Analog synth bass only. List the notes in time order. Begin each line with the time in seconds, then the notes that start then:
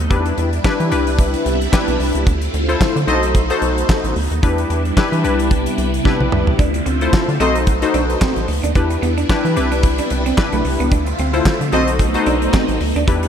0.11 E2
0.38 E2
0.64 E3
0.80 E3
0.92 C2
1.46 C2
1.88 B1
2.00 C2
2.15 C#2
2.27 D2
2.54 D2
2.81 D3
2.96 D3
3.08 B1
3.62 B1
4.04 A1
4.16 D2
4.31 D#2
4.43 E2
4.70 E2
4.97 E3
5.12 E3
5.24 C2
5.78 C2
6.20 B1
6.32 C2
6.47 C#2
6.59 D2
6.86 D2
7.13 D3
7.28 D3
7.40 B1
7.94 B1
8.36 A1
8.48 D2
8.63 D#2
8.75 E2
9.02 E2
9.29 E3
9.45 E3
9.57 C2
10.11 C2
10.53 B1
10.65 C2
10.80 C#2
10.92 D2
11.19 D2
11.45 D3
11.61 D3
11.73 B1
12.27 B1
12.69 A1
12.81 D2
12.96 D#2
13.08 E2